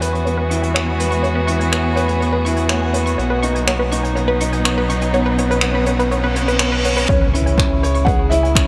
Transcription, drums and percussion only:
0.02 closed hi-hat
0.15 closed hi-hat
0.26 closed hi-hat
0.51 closed hi-hat
0.63 closed hi-hat
0.75 finger snap, closed hi-hat
1.00 closed hi-hat
1.11 closed hi-hat
1.24 closed hi-hat
1.48 closed hi-hat
1.60 closed hi-hat
1.72 finger snap, closed hi-hat
1.97 closed hi-hat
2.09 closed hi-hat
2.22 closed hi-hat
2.46 closed hi-hat
2.56 closed hi-hat
2.69 finger snap, closed hi-hat
2.94 closed hi-hat
3.06 closed hi-hat
3.19 closed hi-hat
3.43 closed hi-hat
3.55 closed hi-hat
3.68 finger snap, closed hi-hat
3.92 closed hi-hat
4.04 closed hi-hat
4.16 closed hi-hat
4.40 closed hi-hat
4.52 closed hi-hat
4.65 finger snap, closed hi-hat
4.90 closed hi-hat
5.01 closed hi-hat
5.13 closed hi-hat
5.38 closed hi-hat
5.51 closed hi-hat
5.61 finger snap, closed hi-hat
5.86 closed hi-hat
5.99 closed hi-hat
6.11 closed hi-hat
6.36 closed hi-hat
6.48 closed hi-hat
6.59 finger snap, closed hi-hat
6.84 closed hi-hat
6.97 closed hi-hat
7.09 kick, closed hi-hat
7.35 closed hi-hat
7.47 closed hi-hat
7.58 finger snap, kick, closed hi-hat
7.84 closed hi-hat
7.95 closed hi-hat
8.07 kick, closed hi-hat
8.31 closed hi-hat
8.45 closed hi-hat
8.55 finger snap, kick, closed hi-hat

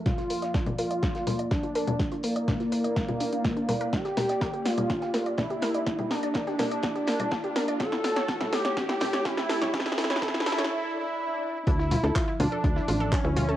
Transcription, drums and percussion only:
0.06 kick, snare, closed hi-hat, low conga
0.18 snare, closed hi-hat
0.30 closed hi-hat, open hi-hat
0.42 snare, closed hi-hat
0.54 kick, snare, closed hi-hat
0.66 closed hi-hat, low conga
0.78 closed hi-hat, open hi-hat
0.91 closed hi-hat
1.03 kick, snare, closed hi-hat
1.15 snare, closed hi-hat
1.27 snare, closed hi-hat, open hi-hat, low conga
1.39 closed hi-hat
1.51 kick, snare, closed hi-hat
1.63 closed hi-hat
1.75 closed hi-hat, open hi-hat
1.87 closed hi-hat, low conga
1.99 kick, snare, closed hi-hat
2.11 closed hi-hat
2.23 closed hi-hat, open hi-hat
2.36 closed hi-hat
2.48 kick, snare, closed hi-hat, low conga
2.60 snare, closed hi-hat
2.72 closed hi-hat, open hi-hat
2.84 closed hi-hat
2.96 kick, snare, closed hi-hat
3.08 closed hi-hat, low conga
3.20 closed hi-hat, open hi-hat
3.33 closed hi-hat
3.44 kick, snare, closed hi-hat
3.57 closed hi-hat
3.69 closed hi-hat, open hi-hat, low conga
3.81 closed hi-hat
3.93 kick, snare, closed hi-hat
4.05 snare, closed hi-hat
4.17 snare, closed hi-hat, open hi-hat, low conga
4.29 snare, closed hi-hat
4.41 kick, snare, closed hi-hat
4.53 closed hi-hat
4.65 snare, closed hi-hat, open hi-hat
4.78 closed hi-hat, low conga
4.90 kick, snare, closed hi-hat
5.01 snare, closed hi-hat
5.14 snare, closed hi-hat, open hi-hat
5.26 closed hi-hat
5.38 kick, snare, closed hi-hat, low conga
5.50 closed hi-hat
5.62 snare, closed hi-hat, open hi-hat
5.75 closed hi-hat
5.87 kick, snare, closed hi-hat
5.99 closed hi-hat, low conga
6.11 snare, closed hi-hat, open hi-hat
6.23 closed hi-hat
6.34 kick, snare, closed hi-hat
6.47 snare, closed hi-hat
6.59 snare, closed hi-hat, open hi-hat, low conga
6.71 closed hi-hat
6.83 kick, snare, closed hi-hat
6.96 closed hi-hat
7.07 snare, closed hi-hat, open hi-hat
7.20 closed hi-hat, low conga
7.31 kick, snare, closed hi-hat
7.44 closed hi-hat
7.56 snare, closed hi-hat, open hi-hat
7.68 closed hi-hat
7.80 kick, snare, closed hi-hat, low conga
7.92 snare, closed hi-hat
8.04 snare, closed hi-hat, open hi-hat
8.16 snare, closed hi-hat
8.28 kick, snare, closed hi-hat
8.41 snare, closed hi-hat, low conga
8.53 snare, closed hi-hat, open hi-hat
8.65 snare, closed hi-hat
8.77 kick, snare, closed hi-hat
8.89 snare, closed hi-hat
9.00 snare, closed hi-hat, open hi-hat, low conga
9.13 snare, closed hi-hat
9.25 kick, snare, closed hi-hat
9.37 snare, closed hi-hat
9.49 snare, closed hi-hat, open hi-hat
9.62 snare, closed hi-hat, low conga
9.74 kick, snare, closed hi-hat
9.80 snare
9.86 snare, closed hi-hat, open hi-hat
9.92 snare
9.98 snare, closed hi-hat, open hi-hat
10.04 snare
10.10 snare, closed hi-hat
10.16 snare
10.22 kick, snare, closed hi-hat, low conga
10.28 snare
10.34 snare, closed hi-hat
10.40 snare
10.46 snare, closed hi-hat, open hi-hat
10.52 snare
10.58 snare, closed hi-hat
10.64 snare
11.67 kick, closed hi-hat
11.80 snare
11.91 closed hi-hat, open hi-hat, low conga
12.04 snare, closed hi-hat
12.15 kick, snare, clap, closed hi-hat
12.40 closed hi-hat, open hi-hat, low conga
12.52 closed hi-hat
12.64 kick, closed hi-hat
12.77 snare
12.88 snare, closed hi-hat, open hi-hat
13.00 closed hi-hat
13.12 kick, snare, clap, closed hi-hat
13.36 closed hi-hat, open hi-hat, low conga
13.49 closed hi-hat

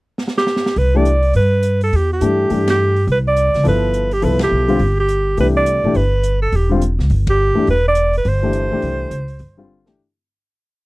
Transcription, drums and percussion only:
0.18 snare
0.28 snare
0.37 snare
0.47 snare
0.56 snare
0.66 snare
0.76 open hi-hat
1.05 closed hi-hat
1.23 open hi-hat
1.33 open hi-hat
1.63 closed hi-hat
1.81 open hi-hat
1.93 open hi-hat
2.21 closed hi-hat
2.50 open hi-hat
2.68 snare, ride
2.96 open hi-hat
3.08 open hi-hat
3.36 closed hi-hat
3.54 snare, open hi-hat
3.65 open hi-hat
3.94 closed hi-hat
4.11 open hi-hat
4.22 open hi-hat
4.39 snare, ride
4.68 open hi-hat
4.79 open hi-hat
5.09 closed hi-hat
5.37 open hi-hat
5.66 closed hi-hat
5.95 open hi-hat
6.24 closed hi-hat
6.52 open hi-hat
6.82 closed hi-hat
6.99 snare
7.10 open hi-hat
7.27 kick, ride
7.67 open hi-hat
7.95 closed hi-hat
8.13 open hi-hat
8.25 open hi-hat
8.53 closed hi-hat
8.82 open hi-hat
9.11 closed hi-hat
9.28 open hi-hat
9.39 open hi-hat
9.86 snare

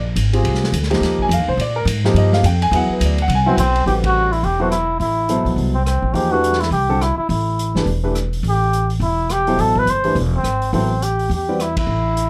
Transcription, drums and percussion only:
0.16 hi-hat pedal, ride
0.33 ride
0.45 ride
0.55 snare
0.64 snare
0.74 hi-hat pedal, ride
0.83 snare
0.91 snare, ride
1.03 snare, ride
1.19 kick
1.31 hi-hat pedal, ride
1.60 ride
1.87 hi-hat pedal, ride
2.05 snare
2.16 ride
2.33 snare
2.44 hi-hat pedal, ride
2.62 ride
2.73 ride
3.01 hi-hat pedal, ride
3.18 ride
3.30 ride
3.58 hi-hat pedal, ride
3.76 ride
3.87 open hi-hat
4.04 kick, ride
4.33 open hi-hat
4.44 open hi-hat
4.72 cross-stick, closed hi-hat
5.01 open hi-hat
5.29 closed hi-hat
5.46 open hi-hat
5.58 open hi-hat
5.86 cross-stick, closed hi-hat
6.15 open hi-hat
6.44 closed hi-hat
6.53 snare
6.60 snare, open hi-hat
6.72 open hi-hat
7.01 cross-stick, closed hi-hat
7.30 open hi-hat
7.59 closed hi-hat
7.76 snare
7.87 open hi-hat
8.15 cross-stick, closed hi-hat
8.33 open hi-hat
8.44 open hi-hat
8.73 closed hi-hat
8.90 open hi-hat
9.01 open hi-hat
9.30 cross-stick, closed hi-hat
9.47 open hi-hat
9.59 open hi-hat
9.76 kick
9.87 closed hi-hat
10.04 open hi-hat
10.16 open hi-hat
10.44 cross-stick, closed hi-hat
10.62 open hi-hat
10.74 open hi-hat
11.02 closed hi-hat
11.19 open hi-hat
11.31 open hi-hat
11.60 cross-stick, closed hi-hat
11.77 kick, ride
12.17 closed hi-hat

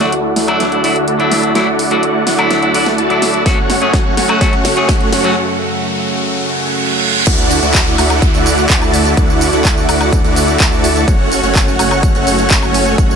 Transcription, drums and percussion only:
0.01 snare, closed hi-hat
0.12 closed hi-hat
0.36 snare, open hi-hat
0.48 closed hi-hat, high woodblock
0.60 snare, closed hi-hat
0.72 closed hi-hat
0.84 open hi-hat
0.96 closed hi-hat
1.08 closed hi-hat
1.20 closed hi-hat
1.32 snare, open hi-hat
1.43 closed hi-hat
1.55 snare, closed hi-hat
1.79 open hi-hat
1.91 closed hi-hat
2.03 closed hi-hat
2.27 snare, open hi-hat
2.39 closed hi-hat, high woodblock
2.51 snare, closed hi-hat
2.63 closed hi-hat
2.74 open hi-hat
2.86 snare, closed hi-hat
2.98 closed hi-hat
3.10 closed hi-hat
3.22 snare, open hi-hat
3.34 closed hi-hat
3.46 kick, snare, closed hi-hat
3.70 snare, open hi-hat
3.82 closed hi-hat
3.93 kick, snare, closed hi-hat
4.17 snare, open hi-hat
4.29 closed hi-hat, high woodblock
4.41 kick, snare, closed hi-hat
4.53 closed hi-hat
4.65 snare, open hi-hat
4.77 closed hi-hat
4.89 kick, snare, closed hi-hat
5.01 closed hi-hat
5.12 snare, open hi-hat
5.24 closed hi-hat
7.27 kick, closed hi-hat, crash, tambourine
7.51 open hi-hat, tambourine
7.63 closed hi-hat, tambourine
7.74 kick, clap, closed hi-hat, tambourine
7.87 tambourine
7.98 open hi-hat, tambourine, high woodblock
8.10 closed hi-hat, tambourine, high woodblock
8.22 kick, closed hi-hat, tambourine
8.34 closed hi-hat, tambourine
8.46 open hi-hat, tambourine
8.58 closed hi-hat, tambourine
8.70 kick, clap, closed hi-hat, tambourine
8.82 closed hi-hat, tambourine, high woodblock
8.94 open hi-hat, tambourine
9.05 closed hi-hat, tambourine
9.17 kick, closed hi-hat, tambourine
9.30 tambourine
9.41 open hi-hat, tambourine
9.53 closed hi-hat, tambourine
9.65 kick, clap, closed hi-hat, tambourine
9.78 tambourine
9.89 open hi-hat, tambourine, high woodblock
10.01 closed hi-hat, tambourine, high woodblock
10.13 kick, closed hi-hat, tambourine
10.24 closed hi-hat, tambourine
10.36 open hi-hat, tambourine
10.48 closed hi-hat, tambourine
10.60 kick, clap, closed hi-hat, tambourine
10.72 closed hi-hat, tambourine
10.84 open hi-hat, tambourine
10.96 closed hi-hat, tambourine
11.08 kick, closed hi-hat, tambourine
11.32 open hi-hat, tambourine
11.44 closed hi-hat, tambourine
11.55 kick, clap, closed hi-hat, tambourine
11.68 tambourine
11.79 open hi-hat, tambourine, high woodblock
11.91 closed hi-hat, tambourine, high woodblock
12.03 kick, closed hi-hat, tambourine
12.15 closed hi-hat, tambourine
12.27 open hi-hat, tambourine
12.39 closed hi-hat, tambourine
12.51 kick, clap, closed hi-hat, tambourine
12.63 closed hi-hat, tambourine, high woodblock
12.74 open hi-hat, tambourine
12.86 closed hi-hat, tambourine
12.98 kick, closed hi-hat, tambourine
13.11 tambourine

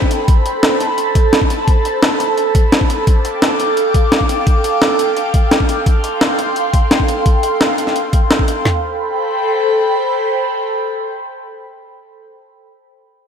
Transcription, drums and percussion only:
0.02 kick
0.11 closed hi-hat
0.28 kick, closed hi-hat
0.46 closed hi-hat
0.63 snare, closed hi-hat
0.80 closed hi-hat
0.98 closed hi-hat
1.15 kick, closed hi-hat
1.33 snare, closed hi-hat
1.42 kick
1.50 closed hi-hat
1.68 kick, closed hi-hat
1.85 closed hi-hat
2.03 snare, closed hi-hat
2.20 closed hi-hat
2.38 closed hi-hat
2.55 kick, closed hi-hat
2.72 snare, closed hi-hat
2.81 kick
2.90 closed hi-hat
3.07 kick, closed hi-hat
3.25 closed hi-hat
3.42 snare, closed hi-hat
3.60 closed hi-hat
3.77 closed hi-hat
3.94 kick, closed hi-hat
4.12 snare, closed hi-hat
4.21 kick
4.29 closed hi-hat
4.47 kick, closed hi-hat
4.64 closed hi-hat
4.82 snare, closed hi-hat
4.99 closed hi-hat
5.17 closed hi-hat
5.34 kick, closed hi-hat
5.51 snare, closed hi-hat
5.60 kick
5.69 closed hi-hat
5.86 kick, closed hi-hat
6.04 closed hi-hat
6.21 snare, closed hi-hat
6.39 closed hi-hat
6.56 closed hi-hat
6.74 kick, closed hi-hat
6.91 snare, closed hi-hat
7.00 kick
7.08 closed hi-hat
7.26 kick, closed hi-hat
7.43 closed hi-hat
7.61 snare, closed hi-hat
7.78 closed hi-hat
7.87 snare
7.96 closed hi-hat
8.13 kick, closed hi-hat
8.31 snare, closed hi-hat
8.39 kick
8.48 closed hi-hat
8.65 snare, floor tom

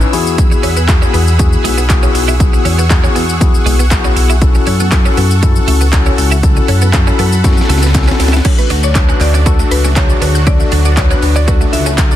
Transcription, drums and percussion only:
0.01 shaker
0.13 open hi-hat, shaker
0.27 shaker
0.38 kick, closed hi-hat, shaker
0.52 shaker
0.63 open hi-hat, shaker
0.77 shaker
0.89 kick, clap, closed hi-hat, shaker
1.02 shaker
1.14 open hi-hat, shaker
1.28 shaker
1.39 kick, closed hi-hat, shaker
1.53 shaker
1.65 open hi-hat, shaker
1.78 shaker
1.90 kick, clap, closed hi-hat, shaker
2.03 shaker
2.15 open hi-hat, shaker
2.29 shaker
2.40 kick, closed hi-hat, shaker
2.54 shaker
2.65 open hi-hat, shaker
2.79 shaker
2.90 kick, clap, closed hi-hat, shaker
3.04 shaker
3.16 open hi-hat, shaker
3.29 shaker
3.41 kick, closed hi-hat, shaker
3.54 shaker
3.67 open hi-hat, shaker
3.80 shaker
3.91 kick, clap, closed hi-hat, shaker
4.04 shaker
4.17 open hi-hat, shaker
4.30 shaker
4.42 kick, closed hi-hat, shaker
4.55 shaker
4.67 open hi-hat, shaker
4.80 shaker
4.92 kick, clap, closed hi-hat, shaker
5.06 shaker
5.17 open hi-hat, shaker
5.31 shaker
5.43 kick, closed hi-hat, shaker
5.56 shaker
5.68 open hi-hat, shaker
5.81 shaker
5.93 kick, clap, closed hi-hat, shaker
6.06 shaker
6.18 open hi-hat, shaker
6.32 shaker
6.43 kick, closed hi-hat, shaker
6.57 shaker
6.68 open hi-hat, shaker
6.82 shaker
6.93 kick, clap, closed hi-hat, shaker
7.07 shaker
7.19 open hi-hat, shaker
7.33 shaker
7.44 kick, snare, closed hi-hat, shaker
7.52 snare
7.57 snare, shaker
7.69 snare, open hi-hat, shaker
7.78 snare
7.83 snare, shaker
7.95 kick, snare, clap, closed hi-hat, shaker
8.03 snare
8.08 snare, shaker
8.20 snare, open hi-hat, shaker
8.28 snare
8.33 snare, shaker
8.45 kick, closed hi-hat, crash, shaker
8.58 shaker
8.70 open hi-hat, shaker
8.83 shaker
8.95 kick, clap, closed hi-hat, shaker
9.09 shaker
9.21 clap, open hi-hat, shaker
9.34 shaker
9.46 kick, closed hi-hat, shaker
9.59 shaker
9.71 open hi-hat, shaker
9.85 shaker
9.96 kick, clap, closed hi-hat, shaker
10.10 shaker
10.22 open hi-hat, shaker
10.35 shaker
10.47 kick, closed hi-hat, shaker
10.60 shaker
10.72 open hi-hat, shaker
10.85 shaker
10.97 kick, clap, closed hi-hat, shaker
11.11 shaker
11.22 open hi-hat, shaker
11.36 shaker
11.48 kick, closed hi-hat, shaker
11.61 shaker
11.73 open hi-hat, shaker
11.86 shaker
11.98 kick, clap, closed hi-hat, shaker
12.11 shaker

